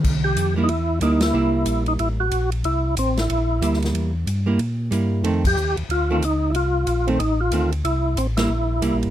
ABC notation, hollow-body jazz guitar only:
X:1
M:4/4
L:1/8
Q:"Swing" 1/4=184
K:Cmix
V:1 name="Hollow-body jazz guitar"
z3 [G,B,E] z2 [G,B,E]2 | [G,B,E]4- [G,B,E] z3 | z6 [G,B,E]2- | [G,B,E] z2 [G,B,E] z2 [G,B,E]2 |
[_E,A,C] z4 [E,A,C] z2 | z3 [_E,A,C] z2 [E,A,C] z | z3 [G,B,E] z2 [G,B,E]2 |]